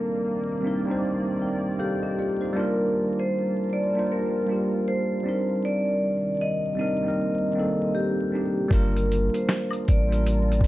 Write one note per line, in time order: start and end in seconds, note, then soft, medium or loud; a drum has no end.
0.00 2.52 C3 medium
0.00 2.52 D#3 medium
0.00 0.50 G3 medium
0.00 0.53 A#3 medium
0.00 2.52 A#3 medium
0.00 0.51 C4 medium
0.00 0.52 D4 medium
0.00 0.52 D#4 medium
0.00 0.98 A#4 medium
0.00 2.52 D5 medium
0.61 0.83 G3 medium
0.61 0.84 C4 medium
0.61 0.85 D4 medium
0.66 0.86 D#4 medium
0.66 0.86 A#4 medium
0.85 1.35 G3 medium
0.85 1.36 C4 medium
0.85 1.37 D4 medium
0.90 1.37 D#4 medium
0.90 1.38 C5 medium
1.42 1.78 A#4 medium
1.42 1.78 G5 medium
1.79 2.58 G4 medium
1.79 2.01 A4 medium
1.79 2.01 F5 medium
2.03 2.17 G4 medium
2.03 2.17 D#5 medium
2.19 2.41 F4 medium
2.19 2.40 D5 medium
2.41 2.78 D#4 medium
2.41 2.77 C5 medium
2.53 3.77 G3 loud
2.53 5.22 G3 medium
2.53 3.78 A#3 loud
2.53 3.79 D4 loud
2.53 5.22 F4 medium
2.53 5.22 A#4 medium
2.53 3.20 A#4 medium
2.53 5.22 A5 medium
2.58 3.80 F4 loud
2.58 3.81 A#4 loud
3.19 3.73 C5 medium
3.73 4.08 D5 medium
3.93 4.43 G3 medium
3.93 4.44 A#3 medium
3.93 4.45 D4 medium
3.98 4.45 F4 medium
3.98 4.46 C5 medium
4.12 4.90 A#4 loud
4.46 5.22 G3 medium
4.46 5.25 A#3 medium
4.46 5.25 D4 medium
4.50 5.26 F4 medium
4.50 5.27 G4 medium
4.88 5.66 C5 loud
5.23 8.68 C3 medium
5.23 8.68 D#3 medium
5.23 6.66 G3 medium
5.23 8.68 A#3 medium
5.23 6.67 C4 medium
5.23 8.67 C4 medium
5.23 6.68 D4 medium
5.27 6.68 D#4 medium
5.27 6.69 A#4 medium
5.65 6.43 D5 loud
6.41 6.78 D#5 loud
6.76 6.98 G3 medium
6.76 6.99 C4 medium
6.76 7.00 D4 medium
6.76 7.98 D#5 loud
6.80 7.00 D#4 medium
6.80 7.01 A#4 loud
7.02 7.51 G3 medium
7.02 7.53 A#3 medium
7.02 7.52 C4 medium
7.07 7.53 D#4 medium
7.07 7.54 A#4 medium
7.54 8.26 G3 medium
7.54 8.27 A#3 medium
7.54 8.27 C4 medium
7.58 8.28 D#4 medium
7.58 8.29 A4 loud
7.95 8.73 G4 medium
8.31 8.67 G3 medium
8.31 8.68 C4 medium
8.31 8.69 D4 medium
8.35 8.69 D#4 medium
8.35 8.70 G4 medium
8.69 9.29 G1 loud
8.69 9.93 G3 loud
8.69 10.67 G3 medium
8.69 9.94 A#3 loud
8.69 9.94 D4 medium
8.69 10.67 F4 medium
8.69 9.35 A#4 loud
8.69 10.67 A#4 medium
8.69 10.67 A5 medium
8.69 kick loud
8.69 closed hi-hat medium
8.69 shaker medium
8.73 9.95 F4 loud
8.73 9.96 A#4 loud
8.96 closed hi-hat soft
9.10 closed hi-hat medium
9.10 shaker soft
9.34 9.88 C5 medium
9.34 closed hi-hat soft
9.49 snare loud
9.49 closed hi-hat medium
9.49 shaker medium
9.71 closed hi-hat soft
9.71 high woodblock medium
9.87 10.67 A1 medium
9.87 10.67 D5 loud
9.87 kick medium
9.87 closed hi-hat medium
9.87 shaker soft
10.08 10.58 G3 medium
10.08 10.59 A#3 medium
10.08 10.59 D4 medium
10.12 10.60 F4 medium
10.12 10.61 A#4 medium
10.12 closed hi-hat soft
10.26 closed hi-hat medium
10.26 shaker medium
10.52 closed hi-hat soft
10.60 10.67 G3 medium
10.60 10.67 A#3 medium
10.60 10.67 D4 medium
10.60 kick medium
10.60 closed hi-hat medium
10.60 shaker soft